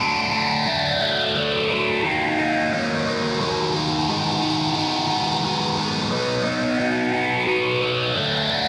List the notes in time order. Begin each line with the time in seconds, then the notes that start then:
0.00 D3 F#3 A3 D4
0.32 F#3 A3 D4
0.66 D3 F#3 A3 D4
1.00 F#3 A3 D4
1.35 D3 F#3 A3 D4
1.70 F#3 A3 D4
2.04 D#3 F#3 A#3 D#4
2.38 F#3 A#3 D#4
2.71 D#3 F#3 A#3 D#4
3.06 F#3 A#3 D#4
3.40 D#3 F#3 A#3 D#4
3.74 F#3 A#3 D#4
4.08 G#2 D#3 G#3 B3 D#4
4.42 G#3 B3 D#4
4.75 D#3 G#3 B3 D#4
5.08 G#3 B3 D#4
5.42 D#3 G#3 B3 D#4
5.76 G#3 B3 D#4
6.10 B2 F#3 B3 D#4
6.44 F#3 B3 D#4
6.79 B2 F#3 B3 D#4
7.12 F#3 B3 D#4
7.45 B2 F#3 B3 D#4
7.81 F#3 B3 D#4
8.15 D3 F#3 A3 D4
8.49 F#3 A3 D4